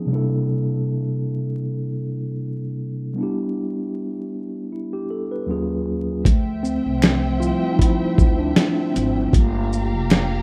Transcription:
Already playing: F3 B3 C#4 D#4 G#4
0.06 C3 G3 A#3
0.11 D4 E4 A4
3.14 G3 B3
3.18 D4 E4
3.23 G4
4.73 E4
4.93 G4
5.10 A4
5.31 B4
5.46 D#2 F#3 A#3 C#4 F4
5.51 G#4
6.24 D2 F3 A3 C5 E5 G5, kick, closed hi-hat
6.63 C4, shaker
6.86 C2
7.02 finger snap, snare, closed hi-hat
7.40 F3 G3 C4 E4 F4, shaker
7.72 D#4
7.79 E4, kick, closed hi-hat
8.02 muted upright bass stroke
8.18 D2, kick, shaker
8.39 D4
8.56 finger snap, snare, closed hi-hat
8.94 G#1 C4, closed hi-hat, shaker
9.33 G1 A3 A#3 F4 G4 F5 A#5, kick, closed hi-hat
9.73 shaker
9.94 F1
10.10 finger snap, snare, closed hi-hat

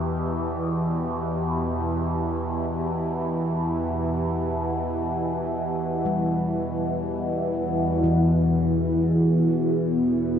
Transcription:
Already playing: E2 B2 E3 B3 D4 E4 G4
6.05 G3
8.03 E2 B2 E3 G4
9.60 B3

